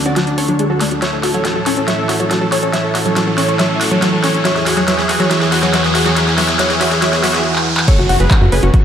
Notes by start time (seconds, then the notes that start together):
Already playing: D2 D3 A3 F#4 A4, riser
0.06 C#4 F#4 D5, closed hi-hat
0.16 F#3 D4, snare, closed hi-hat
0.27 D4, closed hi-hat
0.38 C#4 A4 C#5, open hi-hat
0.48 F#3 D4, closed hi-hat
0.59 G#3 D4, closed hi-hat
0.70 F#3 F#4 A4
0.81 A3 D4, snare, open hi-hat
0.91 F#3 D4, closed hi-hat
1.02 A2 E3 F#3 C#4 A4 C#5 E5, snare, closed hi-hat
1.13 A4
1.23 F#4 A4, snare, open hi-hat
1.34 F#3 A4 C#5, closed hi-hat
1.45 F#3 A4, snare, closed hi-hat
1.56 F#3 A4
1.66 C#4 A4 C#5, snare, open hi-hat
1.77 C#4 A4, closed hi-hat
1.88 F#3 C#5 E5, snare, closed hi-hat
1.98 A4
2.09 F#4 A4, snare, open hi-hat
2.20 F#3 A4 C#5, closed hi-hat
2.31 F#3 A4, snare, closed hi-hat
2.41 F#3 A4
2.52 C#4 A4 C#5, snare, open hi-hat
2.63 C#4 A4, closed hi-hat
2.73 F#3 C#5 E5, snare, closed hi-hat
2.84 A4
2.95 F#4 A4, snare, open hi-hat
3.06 F#3 A4 C#5, closed hi-hat
3.16 F#3 A4, snare, closed hi-hat
3.27 F#3 A4
3.38 C#4 A4 C#5, snare, open hi-hat
3.48 C#4 A4, closed hi-hat
3.59 F#3 C#5 E5, snare, closed hi-hat
3.70 A4
3.81 F#4 A4, snare, open hi-hat
3.91 F#3 A4 C#5, closed hi-hat
4.02 F#3 A4, snare, closed hi-hat
4.13 F#3 A4
4.23 C#4 A4 C#5, snare, open hi-hat
4.34 C#4 A4, closed hi-hat
4.45 E2 F#3 B3 G#4 B4 C#5 E5, snare, closed hi-hat
4.56 G#4, snare
4.66 F#4 G#4, snare, open hi-hat
4.77 F#3 G#4 C#5, snare, closed hi-hat
4.88 F#3 C#5 E5, snare, closed hi-hat
4.99 G#4, snare
5.09 F#4 G#4, snare, open hi-hat
5.20 F#3 G#4 C#5, snare, closed hi-hat
5.31 F#3 C#5 E5, snare, closed hi-hat
5.41 G#4, snare
5.52 F#4 G#4, snare, open hi-hat
5.63 F#3 G#4 C#5, snare, closed hi-hat
5.73 F#3 C#5 E5, snare, closed hi-hat
5.84 G#4, snare
5.95 F#4 G#4, snare, open hi-hat
6.06 F#3 G#4 C#5, snare, closed hi-hat
6.16 F#3 C#5 E5, snare, closed hi-hat
6.27 G#4, snare
6.38 F#3 C#5 E5, snare, open hi-hat
6.49 G#4, snare, closed hi-hat
6.59 F#3 C#5 E5, snare, closed hi-hat
6.70 G#4, snare, closed hi-hat
6.81 F#3 C#5 E5, snare, open hi-hat
6.91 G#4, snare, closed hi-hat
7.02 F#3 C#5 E5, snare, closed hi-hat, swell
7.13 G#4, snare, closed hi-hat
7.24 F#3 C#5 E5, snare, open hi-hat
7.34 G#4, snare, closed hi-hat
7.56 clap
7.77 clap
7.88 F#3 A3 C#4 A4 C#5, kick, closed hi-hat, crash, downlifter
7.99 F#1 F#4
8.09 F#1 F#4, open hi-hat
8.20 F#1 F#3 G#4 B4, closed hi-hat
8.31 F#3 F#4, kick, clap, closed hi-hat
8.41 F#2 F#3 F#4
8.52 F#1 C#4 G#4 B4, open hi-hat
8.63 F#1 C#4 F#4, closed hi-hat
8.74 F#3 F#4, kick, closed hi-hat